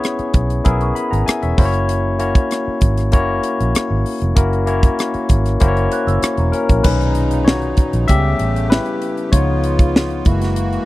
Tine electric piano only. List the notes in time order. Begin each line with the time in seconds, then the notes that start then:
Already playing: B3 C#4 E4 G#4 C#5
0.64 B3 C#4 E4 G#4 A#4
0.95 G#5 B5
1.11 F#5 A#5
1.26 E5 G#5
1.43 C#5 E5
1.57 A#3 C#4 E4 F#4 C5
1.65 C#5
2.19 A#3 C#4 E4 F#4 C#5
3.12 A#3 C#4 E4 F#4 C#5
4.35 A#3 C#4 E4 F#4 A#4
4.66 A#3 C#4 E4 F#4 C#5
5.60 A#3 C#4 E4 F#4 C5
5.68 C#5
6.52 C#4 A#4
6.84 A#2 D#3 C#4 D#4 B4
7.45 F#4 C#5
8.08 G3 B3 C#4 G4 E5
8.70 E4 B4
9.32 F3 B3 D#4 F4 C#5
10.25 G#3 A#3 E4